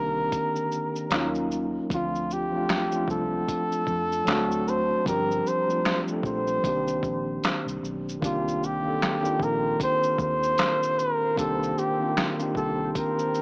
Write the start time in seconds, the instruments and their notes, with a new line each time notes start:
Already playing: fingered electric bass C2, tine electric piano D#3 A#3 C4 D4 G4, muted trumpet A#4
0.32 kick, closed hi-hat, shaker
0.56 shaker
0.72 shaker
0.96 shaker
1.10 fingered electric bass D#2, tine electric piano F#3 A#3 C#4 D#4, snare, clap, closed hi-hat, shaker
1.15 tine electric piano F4
1.35 shaker
1.51 shaker
1.90 fingered electric bass D2, tine electric piano F3 A3 C4 D4, kick, closed hi-hat, shaker
1.94 muted trumpet F4, tine electric piano F4
2.15 shaker
2.31 muted trumpet G4, shaker
2.52 tine electric piano F3 A3 C4 D4
2.57 tine electric piano F4
2.69 snare, clap, closed hi-hat, shaker
2.92 tine electric piano F3 A3 C4 D4, shaker
2.97 tine electric piano F4
3.08 fingered electric bass C2, muted trumpet A4, kick, shaker
3.48 kick, closed hi-hat, shaker
3.72 shaker
3.87 fingered electric bass F2, kick, shaker
4.12 shaker
4.25 fingered electric bass D2, tine electric piano F#3 A3 C4 D4, snare, closed hi-hat, shaker
4.29 tine electric piano F#4, clap
4.51 shaker
4.68 muted trumpet C5, shaker
5.04 fingered electric bass G1, tine electric piano F3 G3 C4 D4, muted trumpet A#4, kick, closed hi-hat, shaker
5.09 tine electric piano G4
5.31 shaker
5.47 muted trumpet C5, shaker
5.67 tine electric piano F3 A3 C4 D4, shaker
5.72 tine electric piano F4
5.85 snare, clap, closed hi-hat, shaker
6.08 tine electric piano F3 A3 C4 D4, shaker
6.13 tine electric piano A4
6.23 fingered electric bass A#1, muted trumpet C5, kick, shaker
6.47 shaker
6.63 fingered electric bass C2, tine electric piano D#3 A#3 C4 D4, kick, closed hi-hat, shaker
6.68 tine electric piano G4
6.88 shaker
7.03 fingered electric bass A#1, kick, shaker
7.44 snare, clap, closed hi-hat, shaker
7.66 fingered electric bass C2, shaker
7.83 fingered electric bass B1, shaker
8.09 shaker
8.20 fingered electric bass C2, tine electric piano D#3 A#3 C4 D4, ambient pad A#3 C5 C6, kick, closed hi-hat, shaker
8.25 muted trumpet F4, tine electric piano G4
8.48 shaker
8.63 muted trumpet G4, shaker
8.83 tine electric piano D#3 A#3 C4 D4
8.88 tine electric piano A4
9.02 snare, clap, closed hi-hat, shaker
9.22 tine electric piano D#3 A#3 C4 D4, shaker
9.27 tine electric piano F4
9.40 fingered electric bass A#1, muted trumpet A#4, kick, shaker
9.80 muted trumpet C5, kick, closed hi-hat, shaker
10.03 shaker
10.18 fingered electric bass D#2, muted trumpet C5, kick, shaker
10.43 shaker
10.58 snare, clap, closed hi-hat, shaker
10.83 shaker
10.99 muted trumpet A#4, shaker
11.35 fingered electric bass C2, tine electric piano D#3 A#3 C4 D4, muted trumpet A4, ambient pad G5, kick, closed hi-hat, shaker
11.40 tine electric piano G4
11.63 shaker
11.78 muted trumpet G4, shaker
11.99 tine electric piano D#3 A#3 C4 D4
12.04 tine electric piano F4
12.17 snare, clap, closed hi-hat, shaker
12.38 tine electric piano D#3 A#3 C4 D4, shaker
12.42 tine electric piano G4
12.55 fingered electric bass C2, muted trumpet A4, kick, shaker
12.92 muted trumpet A4, kick, closed hi-hat, shaker
12.98 muted trumpet A#4
13.19 shaker
13.34 shaker